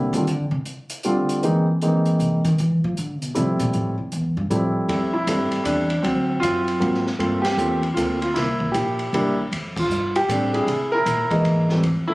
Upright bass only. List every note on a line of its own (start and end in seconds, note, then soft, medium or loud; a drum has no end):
0.00 0.12 C3 medium
0.13 0.28 D#3 loud
0.28 0.50 D3 medium
0.51 0.60 C3 medium
2.19 2.43 C3 medium
2.45 2.58 D#3 loud
2.60 2.83 E3 medium
2.84 2.97 F3 loud
2.98 3.21 D3 medium
3.21 3.35 B2 medium
3.36 3.59 C3 loud
3.60 3.73 A#2 loud
3.75 3.97 A2 medium
3.98 4.11 C2 medium
4.13 4.36 E2 medium
4.37 4.50 G2 medium
4.50 4.80 A2 medium
4.89 5.26 F2 medium
5.27 5.50 G2 medium
5.52 muted upright bass stroke soft
5.65 6.03 E2 medium
6.03 6.41 D2 medium
6.42 6.80 F#2 medium
6.81 7.19 G#2 medium
7.19 7.56 G2 medium
7.57 7.95 E2 medium
7.96 8.34 D2 medium
8.36 8.73 C2 medium
8.74 9.12 A#1 medium
9.13 9.36 C2 medium
9.38 muted upright bass stroke soft
9.52 9.88 F2 medium
9.89 10.27 G2 medium
10.28 10.66 A2 medium
10.67 11.05 C3 medium
11.06 11.29 A#2 medium
11.30 muted upright bass stroke soft
11.45 11.82 G#2 medium
11.83 12.14 F2 medium